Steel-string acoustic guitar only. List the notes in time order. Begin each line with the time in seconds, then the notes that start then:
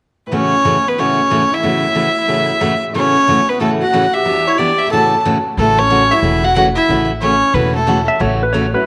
0.32 A2 C#3 E3 A3 C#4 F#4
0.65 A2 C#3 E3 A3 C#4 F#4
0.98 A2 C#3 E3 A3 C#4 F#4
1.30 A2 C#3 E3 A3 C#4 F#4
1.63 A2 C#3 E3 A3 C#4 F#4
1.95 A2 C#3 E3 A3 C#4 F#4
2.28 A2 C#3 E3 A3 C#4 F#4
2.60 A2 C#3 E3 A3 C#4 F#4
2.94 A2 C#3 E3 A3 C#4 F#4
3.28 A2 C#3 E3 A3 C#4 F#4
3.60 A2 C#3 E3 A3 C#4 F#4
3.93 A2 C#3 E3 A3 C#4 F#4
4.25 E3 B3 D4 G4
4.59 E3 B3 D4 G4
4.92 A2 C#3 E3 A3 C#4 F#4
5.25 A2 C#3 E3 A3 C#4 F#4
5.58 C#3 E3 A3 C#4 F#4
5.90 C#3 E3 A3 C#4 F#4
6.23 C#3 E3 A3 C#4 F#4
6.56 C#3 E3 A3 C#4 F#4
6.89 C#3 E3 A3 C#4 F#4
7.21 C#3 E3 A3 C#4 F#4
7.54 C#3 E3 A3 C#4 F#4
7.87 C#3 E3 A3 C#4 F#4
8.19 C#3 E3 A3 C#4 F#4
8.53 C#3 E3 A3 C#4 F#4